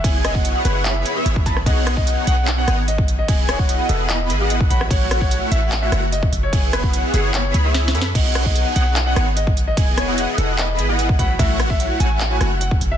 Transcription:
<<
  \new Staff \with { instrumentName = "Digital synth lead" } { \time 4/4 \key b \mixolydian \tempo 4 = 148 gis''8. fis''8. fis''8 b''8. e''8. b''16 r16 | fis''8. fis''8. fis''4 fis''16 r4 r16 | gis''8. fis''8. fis''8 b''8. fis''8. b''16 r16 | fis''8. fis''8. fis''4 fis''16 r4 r16 |
gis''8. fis''8. fis''8 b''8. e''8. b''16 r16 | fis''8. fis''8. fis''4 fis''16 r4 r16 | gis''8. fis''8. fis''8 b''8. fis''8. b''16 r16 | fis''8. fis''8. fis''4 fis''16 r4 r16 | }
  \new Staff \with { instrumentName = "Grand piano" } { \time 4/4 \key b \mixolydian e''16 r16 dis''8 r8 b'16 r16 e''8 r4 a''16 r16 | dis''8 r16 dis''8 r16 fis''8 r16 fis''8 r16 dis''8 r16 dis''16~ | dis''16 r16 cis''8 r8 a'16 r16 dis''8 r4 fis''16 r16 | cis''8 r16 cis''8 r16 e''8 r16 e''8 r16 dis''8 r16 cis''16~ |
cis''16 r16 b'8 r8 gis'16 r16 cis''8 r4 a'16 r16 | dis''8 r16 dis''8 r16 fis''8 r16 fis''8 r16 dis''8 r16 dis''16~ | dis''16 r16 cis''8 r8 a'16 r16 dis''8 r4 fis''16 r16 | e''8 r16 e''8 r16 gis''8 r16 gis''8 r16 fis''8 r16 e''16 | }
  \new Staff \with { instrumentName = "Supersaw synth" } { \time 4/4 \key b \mixolydian <b e' gis' cis'' gis''>8. <b e' gis' cis'' fis''>8. <b e' gis' cis'' fis''>8 <b e' gis' cis'' b''>8. <b e' gis' cis'' e''>8. <b e' gis' cis'' b''>16 r16 | <b dis' gis' cis'' fis''>8. <b dis' gis' cis'' fis''>8. <b dis' gis' cis'' fis''>4 <b dis' gis' cis'' fis''>16 r4 r16 | <b e' gis' dis'' gis''>8. <b e' gis' dis'' fis''>8. <b e' gis' dis'' fis''>8 <b e' gis' dis'' b''>8. <b e' gis' dis'' fis''>8. <a e' fis' cis'' b''>16 r16 | <a e' fis' cis'' fis''>8. <a e' fis' cis'' fis''>8. <a e' fis' cis'' fis''>4 <a e' fis' cis'' fis''>16 r4 r16 |
<b e' gis' cis'' gis''>8. <b e' gis' cis'' fis''>8. <b e' gis' cis'' fis''>8 <b e' gis' cis'' b''>8. <b e' gis' cis'' e''>8. <b e' gis' cis'' b''>16 r16 | <b dis' gis' cis'' fis''>8. <b dis' gis' cis'' fis''>8. <b dis' gis' cis'' fis''>4 <b dis' gis' cis'' fis''>16 r4 r16 | <b e' gis' dis'' gis''>8. <b e' gis' dis'' fis''>8. <b e' gis' dis'' fis''>8 <b e' gis' dis'' b''>8. <b e' gis' dis'' fis''>8. <a e' fis' cis'' b''>16 r16 | <a e' fis' cis'' fis''>8. <a e' fis' cis'' fis''>8. <a e' fis' cis'' fis''>4 <a e' fis' cis'' fis''>16 r4 r16 | }
  \new Staff \with { instrumentName = "808-style bass" } { \clef bass \time 4/4 \key b \mixolydian fis,,4 r8 fis,,4 r8 gis,,4 | b,,4 r8 b,,4 gis,,4. | e,,4 r8 e,,4 gis,,4 a,,8 | a,,4 r8 a,,4 fis,,4 fis,,8~ |
fis,,4 r8 fis,,4 cis,4 fis,8 | b,,4 r8 b,,4 gis,,4. | e,,4 r8 e,,4 gis,,4 a,,8 | a,,4 r8 a,,4 fis,,4 fis,,8 | }
  \new DrumStaff \with { instrumentName = "Drums" } \drummode { \time 4/4 <cymc hh bd>8 <hh ss>16 bd16 hh8 hh8 <hc hh>8 hh8 hh16 bd16 <hh bd>16 ss16 | <cymc hh bd>8 <hh ss>16 bd16 hh8 hh8 <hc hh>8 <hh ss>8 hh16 bd16 hh8 | <cymc hh bd>8 <hh ss>16 bd16 hh8 hh8 <hc hh>8 hh8 hh16 bd16 hh16 ss16 | <cymc hh bd>8 <hh ss>16 bd16 hh8 hh8 <hc hh>8 <hh ss>8 hh16 bd16 hh8 |
<cymc hh bd>8 <hh ss>16 bd16 hh8 hh8 <hc hh>8 hh8 \tuplet 3/2 { <hh sn>16 r16 sn16 hh16 sn16 r16 } | <cymc hh bd>8 <hh ss>16 bd16 hh8 hh8 <hc hh>8 <hh ss>8 hh16 bd16 hh8 | <cymc hh bd>8 <hh ss>8 hh8 hh8 <hc hh>8 hh8 hh16 bd16 <hh bd>8 | <cymc hh bd>8 <hh ss>16 bd16 hh8 hh8 <hc hh>8 <hh ss>8 hh16 bd16 hh8 | }
>>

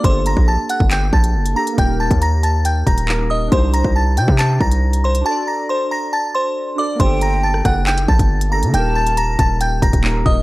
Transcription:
<<
  \new Staff \with { instrumentName = "Synth bell" } { \time 4/4 \key g \minor \tempo 4 = 138 <c'' c'''>8 <bes'' bes'''>8 <a'' a'''>8 <fis'' fis'''>8 <g'' g'''>8 <a'' a'''>4 <bes'' bes'''>8 | <g'' g'''>8 <a'' a'''>8 <bes'' bes'''>8 <a'' a'''>8 <g'' g'''>8 <bes'' bes'''>4 <ees'' ees'''>8 | <c'' c'''>8 <bes'' bes'''>8 <a'' a'''>8 <g'' g'''>8 <a'' a'''>8 <bes'' bes'''>4 <c'' c'''>8 | <a'' a'''>8 <bes'' bes'''>8 <c'' c'''>8 <bes'' bes'''>8 <a'' a'''>8 <c'' c'''>4 <d'' d'''>8 |
<c'' c'''>8 <bes'' bes'''>8 <a'' a'''>8 <fis'' fis'''>8 <g'' g'''>8 <a'' a'''>4 <bes'' bes'''>8 | <g'' g'''>8 <a'' a'''>8 <bes'' bes'''>8 <a'' a'''>8 <g'' g'''>8 <bes'' bes'''>4 <ees'' ees'''>8 | }
  \new Staff \with { instrumentName = "Flute" } { \time 4/4 \key g \minor r1 | r1 | r1 | r1 |
g''2 r2 | a''2 r2 | }
  \new Staff \with { instrumentName = "Synth keys" } { \time 4/4 \key g \minor <bes d' g' a'>2.~ <bes d' g' a'>8 <bes d' g' a'>8 | <bes ees' g' bes'>2. <bes ees' g' bes'>4 | <d' ees' g' c''>1 | <d' fis' a' d''>2.~ <d' fis' a' d''>8 <d' fis' a' d''>8 |
<bes d' g' a'>2.~ <bes d' g' a'>8 <bes d' g' a'>8 | <bes ees' g' bes'>2. <bes ees' g' bes'>4 | }
  \new Staff \with { instrumentName = "808-style bass" } { \clef bass \time 4/4 \key g \minor g,,8. bes,,8 r8 g,,8. bes,,8 fis,,8 r8 | ees,,8. ees,4.~ ees,16 ees,,4. | c,8. c,8. c16 c8. c,4. | r1 |
g,,4. fis,,4 bes,,16 g,,4 d16 | ees,,4. ees,,4 ees,,16 ees,,8. ees,,8 | }
  \new DrumStaff \with { instrumentName = "Drums" } \drummode { \time 4/4 <hh bd>8 hh16 bd16 r8 hh16 bd16 <hc hh>8 bd16 hh16 r16 hh8 hh16 | <hh bd>8. <hh bd>16 hh8 hh8 hh8 <hh bd>16 hh16 hc4 | <hh bd>8 hh16 bd16 r8 hh16 bd16 <hc hh>8 bd16 hh16 r16 hh8 hh16 | r4 r4 r4 r4 |
<hh bd>8 hh8 r16 ss16 <hh bd ss>8 <hc hh>16 hh16 bd16 <hh bd>16 r16 hh8 hh16 | hh8. hh16 hh8 <hh bd>8 hh8 <hh bd>16 <hh bd>16 hc8 bd8 | }
>>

